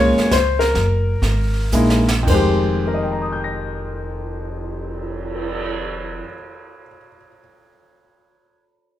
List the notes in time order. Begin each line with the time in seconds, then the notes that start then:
Already playing: C2 G#3 A#3 C#4 F4 C#5
0.17 muted upright bass stroke, snare
0.31 C#2 C5, kick, snare, hi-hat pedal
0.59 A#4, snare
0.74 F#1, brush sweep, kick, snare
1.22 G#1, kick, snare
1.72 A#1 G#3 A#3 D#4 E4, hi-hat pedal
1.90 snare
2.08 snare
2.23 F2
2.27 F1 D#3 G#3 C5, kick, crash
2.34 G4
2.65 cymbal swell
2.87 A#4
2.94 D#5
3.03 G5
3.12 A#5
3.22 D#6
3.33 G6
3.44 A#6